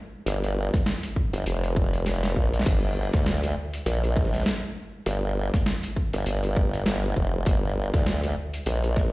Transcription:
0.26 wobble bass G1, closed hi-hat
0.44 closed hi-hat
0.74 kick, snare, closed hi-hat
0.86 snare, closed hi-hat
1.03 closed hi-hat
1.16 kick
1.33 wobble bass G1, closed hi-hat
1.46 wobble bass F1, closed hi-hat
1.64 closed hi-hat
1.76 kick
1.93 closed hi-hat
2.06 snare, closed hi-hat
2.23 snare, closed hi-hat
2.36 wobble bass A#1, kick
2.54 closed hi-hat
2.60 snare
2.66 wobble bass G1, kick, closed hi-hat, crash
3.13 wobble bass D2, kick, snare, closed hi-hat
3.26 snare, closed hi-hat
3.43 closed hi-hat
3.74 closed hi-hat
3.86 wobble bass A#1, closed hi-hat
4.04 closed hi-hat
4.16 kick, snare
4.25 snare
4.34 snare, closed hi-hat
4.40 snare
4.46 snare, closed hi-hat
5.06 wobble bass G1, closed hi-hat
5.54 kick, snare, closed hi-hat
5.66 snare, closed hi-hat
5.83 closed hi-hat
5.96 kick
6.13 wobble bass G1, closed hi-hat
6.26 wobble bass G1, closed hi-hat
6.43 closed hi-hat
6.56 kick
6.74 closed hi-hat
6.86 snare, closed hi-hat
7.16 wobble bass F1, kick
7.46 wobble bass G1, kick, closed hi-hat
7.94 wobble bass D2, kick, snare, closed hi-hat
8.06 snare, closed hi-hat
8.24 closed hi-hat
8.54 closed hi-hat
8.66 wobble bass A#1, closed hi-hat
8.84 closed hi-hat
8.96 kick, snare

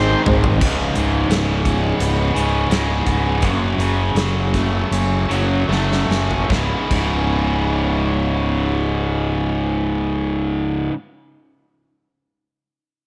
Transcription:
Already playing: fingered electric bass G#1, distorted electric guitar G#2 D#3 G#3, overdriven electric guitar G#2 D#3 G#3 C4 D#4 G#4, honky-tonk piano C4 D#4 G#4 C5, lead electric guitar C4, tonewheel organ C5
0.25 fingered electric bass G#1, honky-tonk piano C4 D#4 G#4 C5, mid tom
0.44 floor tom
0.59 fingered electric bass C#1, distorted electric guitar C#2 G#2 C#3, overdriven electric guitar C#2, kick, crash
0.95 fingered electric bass C#1, overdriven electric guitar G#2, closed hi-hat
1.29 fingered electric bass C#1, overdriven electric guitar C#3, snare, closed hi-hat
1.65 overdriven electric guitar G#3, kick, closed hi-hat
1.99 fingered electric bass C#1, overdriven electric guitar B3, closed hi-hat
2.35 fingered electric bass C#1, distorted electric guitar C#2 G#2 C#3, overdriven electric guitar C#3, closed hi-hat
2.70 fingered electric bass C#1, distorted electric guitar C#2 G#2 C#3, overdriven electric guitar G#3, snare, closed hi-hat
3.06 fingered electric bass C#1, overdriven electric guitar B3, kick, closed hi-hat
3.42 fingered electric bass F#1, distorted electric guitar F#2 C#3 F#3, overdriven electric guitar F#2, kick, closed hi-hat
3.78 fingered electric bass F#1, overdriven electric guitar C#3, closed hi-hat
4.15 fingered electric bass F#1, overdriven electric guitar F#3, snare, closed hi-hat
4.54 overdriven electric guitar A3, kick, snare, closed hi-hat
4.91 fingered electric bass F#1, overdriven electric guitar C#4, closed hi-hat
5.29 fingered electric bass F#1, distorted electric guitar F#2 C#3 F#3, overdriven electric guitar F#3, closed hi-hat
5.67 fingered electric bass F#1, distorted electric guitar F#2 C#3 F#3, overdriven electric guitar A3
5.72 snare
5.92 snare
6.08 fingered electric bass F#1, overdriven electric guitar C#4, snare
6.31 floor tom
6.48 fingered electric bass C#1, overdriven electric guitar C#2 G#2 C#3 G#3 B3 E4, distorted electric guitar C#2 G#2 C#3, kick, snare
6.89 fingered electric bass C#1, distorted electric guitar C#2 G#2, overdriven electric guitar C#2 G#2 C#3 G#3, kick, crash
6.93 distorted electric guitar C#3, overdriven electric guitar B3 E4

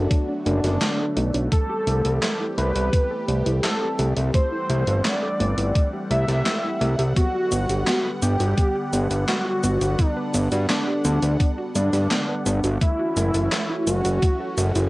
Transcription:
Already playing: analog synth pad D3 F#3 A3 B3 F#4, analog synth lead D4
0.11 synth arpeggio sound A3, kick, closed hi-hat
0.29 synth arpeggio sound D4
0.46 analog synth bass F#1, synth arpeggio sound A3, analog synth lead D4, closed hi-hat
0.64 analog synth bass F#1, synth arpeggio sound F#4, snare, closed hi-hat
0.81 synth arpeggio sound A3, snare, clap, closed hi-hat
0.99 synth arpeggio sound A4
1.17 analog synth bass B1, synth arpeggio sound A3, closed hi-hat
1.34 analog synth bass B1, synth arpeggio sound D4, closed hi-hat
1.52 analog synth pad E3 G3 C4 G4, synth arpeggio sound A3, analog synth lead A4, kick, closed hi-hat
1.70 synth arpeggio sound G4
1.87 analog synth bass C2, synth arpeggio sound A3, closed hi-hat
2.05 analog synth bass C2, synth arpeggio sound A4, closed hi-hat
2.22 synth arpeggio sound A3, snare, clap, closed hi-hat
2.40 synth arpeggio sound E4
2.58 analog synth bass C2, synth arpeggio sound A3, analog synth lead B4, closed hi-hat
2.75 analog synth bass C2, synth arpeggio sound G4, closed hi-hat
2.93 synth arpeggio sound A3, kick, closed hi-hat
3.11 synth arpeggio sound A4
3.28 analog synth bass C2, synth arpeggio sound A3, closed hi-hat
3.46 analog synth bass C2, synth arpeggio sound E4, closed hi-hat
3.64 synth arpeggio sound A3, analog synth lead A4, snare, clap, closed hi-hat
3.81 synth arpeggio sound G4
3.99 analog synth bass C2, synth arpeggio sound A3, closed hi-hat
4.17 analog synth bass C2, synth arpeggio sound A4, closed hi-hat
4.34 synth arpeggio sound A3, analog synth lead C5, analog synth pad F#5, kick, closed hi-hat
4.52 synth arpeggio sound E4
4.70 analog synth bass C2, synth arpeggio sound A3, closed hi-hat
4.87 analog synth bass G1, synth arpeggio sound G4, closed hi-hat
5.05 synth arpeggio sound A3, analog synth lead D5, snare, clap, closed hi-hat
5.23 synth arpeggio sound A4
5.40 analog synth bass G1, synth arpeggio sound A3, closed hi-hat
5.58 analog synth bass G1, synth arpeggio sound E4, closed hi-hat
5.75 synth arpeggio sound A3, kick, closed hi-hat
5.93 synth arpeggio sound G4
6.11 analog synth bass C2, synth arpeggio sound A3, analog synth lead E5, closed hi-hat
6.28 analog synth bass C2, synth arpeggio sound A4, snare, closed hi-hat
6.46 synth arpeggio sound A3, snare, clap, closed hi-hat
6.64 synth arpeggio sound E4
6.81 analog synth bass C2, synth arpeggio sound A3, closed hi-hat
6.99 analog synth bass C2, synth arpeggio sound G4, closed hi-hat
7.16 analog synth pad D3 B3, synth arpeggio sound B3, analog synth lead F#4, kick, closed hi-hat, cabasa
7.35 synth arpeggio sound F#4
7.52 analog synth bass G1, synth arpeggio sound B3, closed hi-hat, cabasa
7.69 analog synth bass G1, synth arpeggio sound G4, closed hi-hat, cabasa
7.87 synth arpeggio sound B3, snare, clap, closed hi-hat, cabasa
8.05 synth arpeggio sound B4
8.22 analog synth bass G1, synth arpeggio sound B3, analog synth lead G4, closed hi-hat, cabasa
8.40 analog synth bass G1, synth arpeggio sound F#4, closed hi-hat, cabasa
8.58 synth arpeggio sound B3, kick, closed hi-hat, cabasa
8.76 synth arpeggio sound G4
8.93 analog synth bass G1, synth arpeggio sound B3, closed hi-hat, cabasa
9.11 analog synth bass G1, synth arpeggio sound B4, closed hi-hat, cabasa
9.28 synth arpeggio sound B3, analog synth lead F#4, snare, clap, closed hi-hat, cabasa
9.46 synth arpeggio sound F#4
9.64 analog synth bass G1, synth arpeggio sound B3, closed hi-hat, cabasa
9.81 analog synth bass G1, synth arpeggio sound G4, closed hi-hat, cabasa
9.99 synth arpeggio sound B3, analog synth lead D4, kick, closed hi-hat, cabasa
10.17 synth arpeggio sound B4
10.34 analog synth bass G1, synth arpeggio sound B3, closed hi-hat, cabasa
10.52 analog synth bass G2, synth arpeggio sound F#4, closed hi-hat, cabasa
10.70 synth arpeggio sound B3, analog synth lead D4, snare, clap, closed hi-hat, cabasa
10.87 synth arpeggio sound G4
11.05 analog synth bass D2, synth arpeggio sound B3, closed hi-hat, cabasa
11.23 analog synth bass D2, synth arpeggio sound B4, closed hi-hat, cabasa
11.40 synth arpeggio sound B3, kick, closed hi-hat, cabasa
11.58 synth arpeggio sound F#4
11.75 analog synth bass G2, synth arpeggio sound B3, analog synth lead D4, closed hi-hat, cabasa
11.93 analog synth bass G2, synth arpeggio sound G4, snare, closed hi-hat, cabasa
12.11 synth arpeggio sound B3, snare, clap, closed hi-hat, cabasa
12.29 synth arpeggio sound B4
12.46 analog synth bass G1, synth arpeggio sound B3, closed hi-hat, cabasa
12.64 analog synth bass G1, synth arpeggio sound F#4, closed hi-hat, cabasa
12.81 analog synth pad E3 A3 C#4 F#4, synth arpeggio sound A3, analog synth lead E4, kick, closed hi-hat, cabasa
12.99 synth arpeggio sound F#4
13.17 analog synth bass F#1, synth arpeggio sound A3, closed hi-hat, cabasa
13.34 analog synth bass F#1, synth arpeggio sound A4, closed hi-hat, cabasa
13.52 synth arpeggio sound A3, snare, clap, closed hi-hat, cabasa
13.70 synth arpeggio sound E4
13.87 analog synth bass F#1, synth arpeggio sound A3, analog synth lead F#4, closed hi-hat, cabasa
14.05 analog synth bass F#1, synth arpeggio sound F#4, closed hi-hat, cabasa
14.22 synth arpeggio sound A3, kick, closed hi-hat, cabasa
14.40 synth arpeggio sound A4
14.58 analog synth bass F#1, synth arpeggio sound A3, closed hi-hat, cabasa
14.75 analog synth bass F#1, synth arpeggio sound E4, closed hi-hat, cabasa

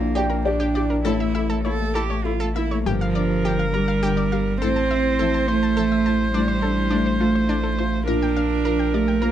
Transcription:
Already playing: felt piano A#1 D4 E4 G4 F5, sub bass A#1, cello A#3
0.02 felt piano D4
0.15 synth pluck G4, viola G4, felt piano D5 G5
0.30 synth pluck A#4
0.44 cello D4, felt piano G4 D5, viola G4
0.60 felt piano D4, synth pluck G4
0.75 felt piano E4, viola G4, synth pluck D5
0.90 felt piano D4, synth pluck A#4
1.04 sub bass A1, felt piano A1 C#5, cello E4, viola E4, synth pluck A4
1.20 felt piano A3, synth pluck E5
1.35 viola E4, felt piano A4, synth pluck E5
1.49 felt piano A3, synth pluck A4
1.64 felt piano A#3, viola E4, cello A4, synth pluck C#5
1.80 felt piano A3
1.94 viola E4, cello G4, felt piano A4, synth pluck A4
2.10 felt piano A3, synth pluck C#5
2.24 viola E4, cello F4, felt piano A4
2.40 felt piano A3, synth pluck A4
2.55 felt piano A#3, cello E4, viola E4, synth pluck E5
2.71 felt piano A3, synth pluck C#5
2.84 sub bass G1, felt piano G2, cello F3, synth pluck G4, viola A#4
3.01 synth pluck F5
3.15 felt piano D4, synth pluck D5
3.45 felt piano D3, synth pluck G4
3.59 synth pluck F5
3.73 cello G3, felt piano G4, synth pluck A#4
3.88 synth pluck F5
4.03 felt piano D3, synth pluck G4
4.17 synth pluck D5
4.32 felt piano G4, synth pluck F5
4.61 sub bass A1, felt piano A2, cello C4, synth pluck A4, viola C5
4.76 synth pluck A5
4.91 felt piano C4, synth pluck E5
5.19 felt piano E3, synth pluck A4
5.34 synth pluck A5
5.48 cello A3, felt piano E4, synth pluck C5
5.63 synth pluck A5
5.77 felt piano E3, synth pluck A4
5.92 synth pluck E5
6.06 felt piano E4, synth pluck A5
6.34 felt piano A2, cello G3, synth pluck D4
6.48 synth pluck C5
6.62 felt piano D4, synth pluck A4
6.90 felt piano A3, synth pluck D4
7.06 synth pluck C5
7.20 cello A3, synth pluck F4, felt piano F4
7.35 synth pluck C5
7.49 felt piano A3, synth pluck D4
7.63 synth pluck A4
7.79 felt piano F4, synth pluck C5
8.07 sub bass A#1, felt piano A#2, cello D4, synth pluck A#4, viola A#4
8.22 synth pluck G5
8.36 felt piano D4, synth pluck F5
8.65 felt piano F3, synth pluck A#4
8.79 synth pluck G5
8.94 cello A3, felt piano G4, synth pluck D5
9.08 synth pluck G5
9.22 felt piano F3, cello A#3, synth pluck A#4

